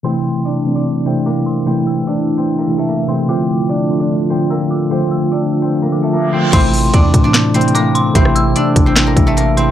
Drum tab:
CC |------------------------------------------------|------------------------------------------------|------------------------------------------------|------------------------------------------------|
HH |------------------------------------------------|------------------------------------------------|------------------------------------------------|------------------------------------------------|
CP |------------------------------------------------|------------------------------------------------|------------------------------------------------|------------------------------------------------|
SD |------------------------------------------------|------------------------------------------------|------------------------------------------------|------------------------------------------------|
BD |------------------------------------------------|------------------------------------------------|------------------------------------------------|------------------------------------------------|

CC |x-----------------------------------------------|------------------------------------------------|
HH |x-----o-----x-----x-----x-----x-x-x-x-----x-----|x-----x-----x-----x-----x-----x-----x-----x-----|
CP |------------------------x-----------------------|------------------------x-----------------------|
SD |------------------------o-----------------------|---r--------------------o-----------------------|
BD |o-----------o-----o-----------------------------|o-----------------o-----------o-----------------|